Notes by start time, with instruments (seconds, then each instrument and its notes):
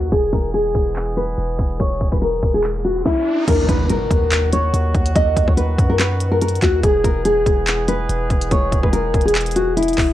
Already playing: 808-style bass D#2
0.12 808-style bass E1, brass ensemble E3 G#3 B3 G#4, nylon-string guitar G#4, kick, closed hi-hat
0.33 808-style bass E1, nylon-string guitar A#4, kick, closed hi-hat
0.54 nylon-string guitar G#4, closed hi-hat
0.75 808-style bass E1, kick, closed hi-hat
0.96 clap, closed hi-hat
1.17 nylon-string guitar B4, closed hi-hat
1.38 808-style bass E1, closed hi-hat
1.59 808-style bass E1, kick, closed hi-hat
1.70 closed hi-hat
1.80 808-style bass E1, nylon-string guitar C#5, kick, closed hi-hat, riser
2.01 808-style bass E1, kick, closed hi-hat
2.12 nylon-string guitar B4, kick
2.22 nylon-string guitar A#4, closed hi-hat
2.43 808-style bass E1, kick, closed hi-hat
2.50 closed hi-hat
2.54 nylon-string guitar G#4, closed hi-hat
2.64 clap, closed hi-hat
2.69 closed hi-hat
2.75 closed hi-hat
2.80 closed hi-hat
2.85 nylon-string guitar F#4, closed hi-hat
3.05 nylon-string guitar E4, kick, snare
3.48 808-style bass D#2, brass ensemble A#2 D#3 F#3 F#4, nylon-string guitar A#4, kick, closed hi-hat, crash, impact
3.69 808-style bass D#2, nylon-string guitar B4, kick, closed hi-hat
3.90 nylon-string guitar A#4, closed hi-hat
4.11 808-style bass D#2, kick, closed hi-hat
4.32 clap, closed hi-hat
4.53 nylon-string guitar C#5, closed hi-hat
4.74 808-style bass D#2, closed hi-hat
4.95 808-style bass D#2, kick, closed hi-hat
5.06 closed hi-hat
5.16 808-style bass D#2, nylon-string guitar D#5, kick, closed hi-hat
5.37 808-style bass D#2, kick, closed hi-hat
5.48 nylon-string guitar C#5, kick
5.57 nylon-string guitar B4, closed hi-hat
5.78 808-style bass F#2, kick, closed hi-hat
5.90 nylon-string guitar A#4
5.99 nylon-string guitar B4, clap, closed hi-hat
6.20 closed hi-hat
6.31 nylon-string guitar A#4
6.41 nylon-string guitar A#4, closed hi-hat
6.48 closed hi-hat
6.55 closed hi-hat
6.62 808-style bass D#2, nylon-string guitar F#4, kick, clap, closed hi-hat
6.83 808-style bass E1, brass ensemble E3 G#3 B3 G#4, nylon-string guitar G#4, kick, closed hi-hat
7.04 808-style bass E1, nylon-string guitar A#4, kick, closed hi-hat
7.25 nylon-string guitar G#4, closed hi-hat
7.46 808-style bass E1, kick, closed hi-hat
7.67 clap, closed hi-hat
7.88 nylon-string guitar B4, closed hi-hat
8.09 808-style bass E1, closed hi-hat
8.30 808-style bass E1, kick, closed hi-hat
8.41 closed hi-hat
8.51 808-style bass E1, nylon-string guitar C#5, kick, closed hi-hat
8.72 808-style bass E1, kick, closed hi-hat
8.83 nylon-string guitar B4, kick
8.93 nylon-string guitar A#4, closed hi-hat
9.14 808-style bass E1, kick, closed hi-hat
9.21 closed hi-hat
9.25 nylon-string guitar G#4, closed hi-hat
9.35 clap, closed hi-hat
9.41 closed hi-hat
9.46 closed hi-hat
9.51 closed hi-hat
9.56 nylon-string guitar F#4, closed hi-hat
9.77 nylon-string guitar E4, closed hi-hat
9.83 closed hi-hat
9.88 closed hi-hat
9.93 closed hi-hat
9.98 808-style bass E1, kick, clap, open hi-hat